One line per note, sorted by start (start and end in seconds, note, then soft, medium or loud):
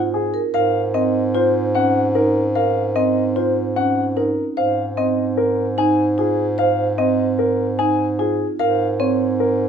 0.00 0.42 G#2 medium
0.00 0.20 F4 medium
0.14 0.40 G#4 medium
0.34 0.53 A#4 medium
0.54 4.45 G#2 medium
0.54 0.80 A#4 medium
0.54 0.80 F5 medium
0.94 1.21 C4 medium
0.94 1.21 D#5 medium
1.35 1.61 F4 medium
1.35 1.61 C5 medium
1.75 2.01 C#4 medium
1.75 2.01 F#5 medium
2.15 2.41 D#4 medium
2.15 2.41 A#4 medium
2.55 2.82 A#4 medium
2.55 2.82 F5 medium
2.96 3.22 C4 medium
2.96 3.22 D#5 medium
3.36 3.62 F4 medium
3.36 3.62 C5 medium
3.76 4.03 C#4 medium
3.76 4.02 F#5 medium
4.17 4.43 D#4 medium
4.17 4.43 A#4 medium
4.57 8.48 G#2 medium
4.57 4.83 C5 medium
4.57 4.83 F5 medium
4.97 5.23 C4 medium
4.97 5.23 D#5 medium
5.37 5.64 A#4 medium
5.78 6.04 D#4 medium
5.78 6.04 G#5 medium
6.18 6.44 F4 medium
6.18 6.44 G#4 medium
6.58 6.84 C5 medium
6.58 6.85 F5 medium
6.98 7.25 C4 medium
6.98 7.25 D#5 medium
7.39 7.65 A#4 medium
7.79 8.05 D#4 medium
7.79 8.05 G#5 medium
8.19 8.45 F4 medium
8.19 8.45 G#4 medium
8.59 9.69 G#2 medium
8.59 8.86 A#4 medium
8.59 8.86 F5 medium
9.00 9.26 C4 medium
9.00 9.26 C#5 medium
9.40 9.66 A#4 medium